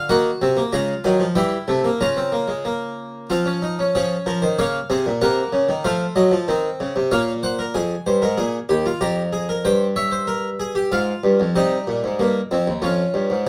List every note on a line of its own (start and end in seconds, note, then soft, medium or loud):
0.09 0.29 D#3 medium
0.09 0.29 A#3 medium
0.09 0.71 F#4 medium
0.09 0.70 F#5 medium
0.42 0.61 C3 medium
0.42 0.57 C4 medium
0.57 0.72 A#3 medium
0.72 0.92 C#3 medium
0.72 0.92 G#3 medium
0.72 1.34 F4 medium
0.72 0.92 A#5 medium
1.04 1.24 D#3 medium
1.04 1.20 F#3 medium
1.04 1.24 G#5 medium
1.20 1.35 F3 medium
1.36 1.56 E3 medium
1.36 1.56 G3 medium
1.36 1.98 E4 medium
1.36 1.98 G5 medium
1.68 1.88 C3 medium
1.68 1.84 A3 medium
1.84 2.00 A#3 medium
2.01 3.26 C#3 medium
2.01 2.16 C#4 medium
2.01 3.26 F4 medium
2.01 3.26 A#5 medium
2.17 2.32 C4 medium
2.32 2.48 A#3 medium
2.48 2.64 G#3 medium
2.65 3.28 A#3 medium
3.30 3.93 F3 medium
3.30 3.46 C4 medium
3.30 3.93 F4 medium
3.30 3.93 F5 medium
3.45 3.61 C#4 medium
3.62 3.78 D#4 medium
3.79 3.94 C#4 medium
3.95 4.15 F3 medium
3.95 4.57 C#4 medium
3.95 4.15 G#4 medium
3.95 4.57 C#5 medium
4.26 4.42 F3 medium
4.26 4.42 A#4 medium
4.42 4.58 D#3 medium
4.42 4.58 C5 medium
4.59 4.78 C#3 medium
4.59 4.78 A#3 medium
4.59 4.78 C#5 medium
4.59 5.20 F5 medium
4.90 5.05 C3 medium
4.90 5.09 C4 medium
4.90 5.10 G#4 medium
5.06 5.21 A#2 medium
5.21 5.41 C3 medium
5.21 5.83 A#3 medium
5.21 5.83 A#4 medium
5.21 5.83 F#5 medium
5.53 5.68 C#3 medium
5.69 5.84 D#3 medium
5.85 6.04 F3 medium
5.85 6.46 A3 medium
5.85 7.07 C5 medium
5.85 6.04 F5 medium
6.16 6.31 F#3 medium
6.16 7.08 D#5 medium
6.32 6.47 F3 medium
6.48 6.68 D#3 medium
6.48 7.09 C4 medium
6.80 6.95 C#3 medium
6.96 7.11 C3 medium
7.11 7.72 A#2 medium
7.11 7.72 A#3 medium
7.11 7.31 C#5 medium
7.11 7.31 F5 medium
7.43 7.58 C5 medium
7.43 7.63 F#5 medium
7.59 7.74 A#4 medium
7.74 7.94 F2 medium
7.74 7.94 G#4 medium
7.74 8.97 G#5 medium
8.06 8.21 G2 medium
8.06 8.21 C5 medium
8.22 8.37 G#2 medium
8.22 8.37 A#4 medium
8.38 8.57 A#2 medium
8.38 8.57 G#4 loud
8.69 8.89 D#2 medium
8.69 8.84 G4 medium
8.86 9.01 F4 medium
9.01 9.63 F2 medium
9.01 9.21 G4 loud
9.01 9.63 A#5 medium
9.33 9.48 G#4 medium
9.49 9.64 A#4 medium
9.65 10.88 G2 medium
9.65 9.85 C5 loud
9.65 9.84 G5 medium
9.96 10.12 C#5 loud
9.96 10.89 E5 medium
10.12 10.27 C5 medium
10.27 10.47 A#4 loud
10.60 10.75 G#4 medium
10.75 10.91 G4 medium
10.92 11.12 G#2 medium
10.92 11.54 F4 medium
10.92 11.54 F5 medium
11.24 11.39 G2 medium
11.40 11.55 F2 medium
11.56 11.76 C3 medium
11.56 12.18 G3 medium
11.56 12.79 D#4 medium
11.56 13.43 D#5 medium
11.88 12.03 A#2 medium
12.04 12.19 G#2 medium
12.19 12.39 G2 medium
12.19 12.39 A#3 medium
12.51 12.67 F2 medium
12.51 12.71 C4 medium
12.68 12.83 D#2 medium
12.82 13.02 F2 medium
12.82 13.44 C#4 medium
12.82 13.44 F4 medium
13.14 13.30 G2 medium
13.30 13.46 G#2 medium